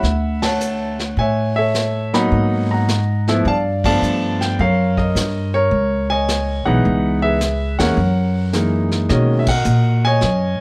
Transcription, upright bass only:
0.03 1.13 D2 medium
1.17 2.27 A2 medium
2.32 3.42 G#2 medium
3.45 3.98 G2 medium
4.02 4.55 G2 medium
4.59 5.12 F#2 medium
5.15 5.68 G2 medium
5.71 6.62 C#2 medium
6.67 6.84 B1 medium
6.85 7.76 C#2 medium
7.79 7.96 E2 medium
7.97 9.06 F#2 medium
9.10 9.64 B2 medium
9.65 10.20 A#2 medium
10.22 10.58 F#2 medium

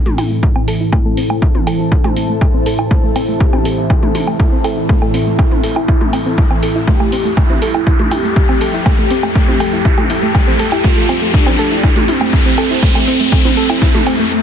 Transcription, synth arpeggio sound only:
0.06 0.13 A3 loud
0.18 0.21 E4 medium
0.31 0.36 A3 medium
0.56 0.60 C4 loud
0.68 0.75 A4 loud
0.80 0.88 E4 medium
0.93 0.98 A3 loud
1.05 1.13 A3 loud
1.17 1.20 C4 medium
1.30 1.35 A3 medium
1.55 1.58 C4 loud
1.67 1.75 A4 loud
1.80 1.87 E4 medium
1.92 1.97 E4 loud
2.04 2.12 A3 loud
2.17 2.20 E4 medium
2.29 2.34 A3 medium
2.54 2.59 C4 loud
2.66 2.74 A4 loud
2.79 2.86 E4 medium
2.91 2.96 A3 loud
3.04 3.11 A3 loud
3.16 3.19 C4 loud
3.28 3.33 A3 medium
3.53 3.56 C4 loud
3.65 3.73 A4 loud
3.78 3.85 E4 medium
3.90 3.95 E4 loud
4.03 4.10 A3 loud
4.15 4.18 E4 medium
4.28 4.32 A3 medium
4.52 4.57 C4 loud
4.64 4.72 A4 loud
4.77 4.84 E4 medium
4.89 4.94 A3 loud
5.02 5.09 A3 loud
5.14 5.17 C4 loud
5.27 5.32 A3 medium
5.51 5.54 C4 loud
5.64 5.71 A4 loud
5.76 5.84 E4 medium
5.88 5.93 E4 loud
6.01 6.08 A3 loud
6.13 6.18 C4 medium
6.26 6.33 C4 medium
6.38 6.46 A3 medium
6.51 6.56 C4 medium
6.63 6.68 A4 medium
6.75 6.78 E4 medium
6.88 6.93 A3 loud
7.00 7.08 A3 loud
7.12 7.15 C4 loud
7.25 7.30 A3 medium
7.50 7.53 C4 loud
7.62 7.70 A4 loud
7.75 7.82 E4 medium
7.87 7.92 E4 loud
7.99 8.07 A3 loud
8.12 8.15 E4 medium
8.24 8.29 A3 medium
8.49 8.54 C4 loud
8.61 8.69 A4 loud
8.74 8.81 E4 medium
8.86 8.91 A3 medium
8.99 9.06 A3 loud
9.11 9.14 C4 loud
9.23 9.28 A3 medium
9.48 9.51 C4 loud
9.60 9.68 A4 medium
9.73 9.80 E4 medium
9.85 9.90 E4 loud
9.98 10.05 A3 loud
10.10 10.13 E4 medium
10.23 10.27 A3 medium
10.47 10.52 C4 loud
10.60 10.67 A4 loud
10.72 10.79 E4 medium
10.84 10.89 A3 loud
10.97 11.04 A3 loud
11.09 11.12 C4 loud
11.22 11.27 A3 medium
11.47 11.49 C4 loud
11.59 11.66 A4 loud
11.71 11.79 E4 medium
11.83 11.89 E4 loud
11.96 12.03 A3 loud
12.08 12.11 E4 medium
12.21 12.26 A3 medium
12.46 12.51 C4 loud
12.58 12.65 A4 loud
12.70 12.78 E4 medium
12.83 12.88 A3 loud
12.95 13.03 A3 loud
13.07 13.10 C4 loud
13.20 13.25 A3 medium
13.45 13.48 C4 loud
13.57 13.65 A4 loud
13.70 13.77 E4 medium
13.82 13.87 E4 loud
13.94 14.02 A3 loud
14.07 14.12 C4 medium
14.19 14.27 A3 medium

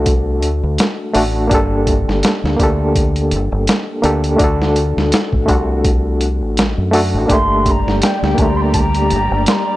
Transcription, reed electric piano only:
0.00 1.13 A3 medium
0.00 1.15 D4 medium
0.00 1.16 F#4 medium
0.00 1.17 A4 medium
1.13 1.46 A3 medium
1.13 1.47 D4 medium
1.13 1.48 F#4 medium
1.13 1.48 A4 medium
1.47 2.54 A#3 medium
1.47 2.55 D4 medium
1.52 2.56 G4 medium
1.52 2.57 A4 loud
2.56 3.99 A#3 medium
2.56 4.00 D4 medium
2.61 4.01 G4 medium
2.61 4.02 A4 medium
4.02 4.35 A#3 medium
4.02 4.36 D4 medium
4.02 4.37 G4 medium
4.02 4.37 A4 medium
4.36 5.43 A3 medium
4.36 5.44 D4 medium
4.41 5.45 F#4 medium
4.41 5.47 A4 loud
5.46 6.88 A3 medium
5.46 6.89 D4 medium
5.51 6.90 F#4 medium
5.51 6.92 A4 medium
6.91 7.25 A3 medium
6.91 7.25 D4 medium
6.91 7.26 F#4 medium
6.91 7.26 A4 loud
7.26 8.32 A#3 medium
7.26 8.34 D4 medium
7.31 8.36 A3 medium
7.31 8.35 G4 medium
8.34 9.77 A#3 medium
8.34 9.77 D4 medium
8.39 9.77 A3 medium
8.39 9.77 G4 medium

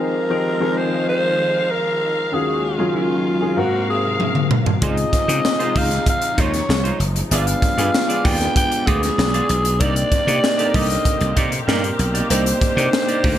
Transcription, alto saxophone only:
0.00 0.79 A#4 loud
0.78 1.08 C5 loud
1.09 1.72 C5 loud
1.71 2.35 A#4 loud
2.33 2.66 G#4 medium
2.65 2.95 F4 medium
2.96 3.60 F4 medium
3.58 3.89 F#4 loud
3.90 4.47 G#4 medium
4.83 5.79 D#5 loud
5.78 6.08 F5 loud
6.09 6.42 F5 loud
6.40 7.01 C#5 medium
7.32 8.27 F5 loud
8.25 8.56 G5 loud
8.57 8.89 G5 loud
8.87 9.82 G#4 loud
9.81 10.76 D5 loud
10.74 11.41 D#5 loud
11.68 12.26 A#4 medium
12.31 13.38 C5 loud

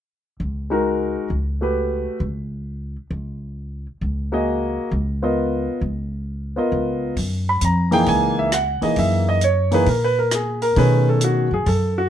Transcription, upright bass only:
0.40 1.15 C#2 medium
1.30 2.05 C#2 medium
2.20 2.95 C#2 medium
3.11 3.86 C#2 medium
4.01 4.76 C#2 medium
4.91 5.66 C#2 medium
5.81 6.56 C#2 medium
6.72 7.14 C#2 medium
7.17 7.59 F#2 medium
7.61 8.04 F2 medium
8.07 8.78 C#2 medium
8.82 muted upright bass stroke soft
8.96 9.83 F#2 medium
9.86 10.73 A#2 medium
10.76 11.48 B2 medium
11.51 11.65 F#2 medium
11.66 12.09 F#2 medium

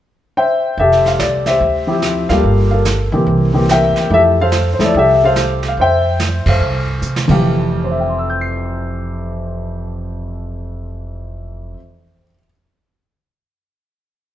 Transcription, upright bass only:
0.78 1.16 F1 medium
1.19 1.58 C2 medium
1.60 2.25 D2 medium
2.29 2.43 D2 medium
2.43 3.08 G1 medium
3.12 3.26 B1 medium
3.26 3.92 C2 medium
3.96 muted upright bass stroke soft
4.10 4.75 F2 medium
4.79 muted upright bass stroke soft
4.94 5.73 C2 medium
5.77 6.42 F2 medium
6.46 6.59 F#2 medium
6.60 6.99 C2 medium
7.02 7.27 C3 medium
7.29 11.73 F1 medium

